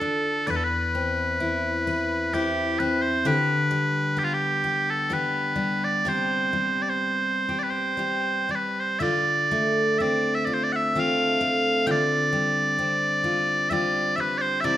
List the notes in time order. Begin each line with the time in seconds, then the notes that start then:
Already playing: D3 F4 A4
0.01 D4
0.47 E2 B4 D5
0.56 A4
0.64 B4
0.95 C4
1.40 E4
1.87 B4
2.33 C4 E4 G4 B4
2.79 C4 B4
3.02 C5
3.25 D3 G4 B4
3.71 G3
4.17 B3 G4
4.24 F4
4.34 G4
4.64 G4
4.90 A4
5.10 G3 B3 G4 B4
5.56 G3
5.84 D5
6.05 C3 G4 C5
6.53 G3
6.82 D5
6.89 C5
7.49 G4
7.59 D5
7.63 B4
7.70 C5
7.97 G3 G4
8.49 G3 D5
8.55 B4
8.80 C5
8.99 D3 F4 D5 E5
9.51 A3
9.99 C4 D5 E5
10.35 E5
10.45 F4 D5
10.54 C5
10.63 D5
10.72 E5 F#5
10.95 A3 C4 F4
11.00 F5
11.41 A3
11.87 D3 F4 G5
11.91 D5
12.33 G3
12.79 C4
13.24 F4
13.70 G3 C4 F4 D5 E5
14.16 G3 E5
14.20 B4
14.38 C5 D5
14.61 C3 E4 E5
14.65 D5